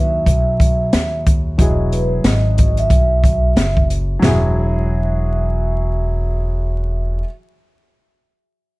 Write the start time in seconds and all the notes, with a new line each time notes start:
Already playing: D#2 F#3 E4 F#4 G#4 E5
0.26 B1, kick, closed hi-hat
0.60 kick, closed hi-hat
0.93 D#2, snare, closed hi-hat
1.26 kick, closed hi-hat
1.58 E1 F#3 E4 F#4 G#4 D#5, kick, closed hi-hat
1.92 B4, closed hi-hat
2.24 G#1 D#5, snare, closed hi-hat
2.58 kick, closed hi-hat
2.77 E5, closed hi-hat
2.90 B1, kick, closed hi-hat
3.24 kick, closed hi-hat
3.56 F#1, snare, closed hi-hat
3.77 kick
3.90 closed hi-hat
4.19 E1 F#3 F#4, snare, floor tom
4.24 E4 G#4 E5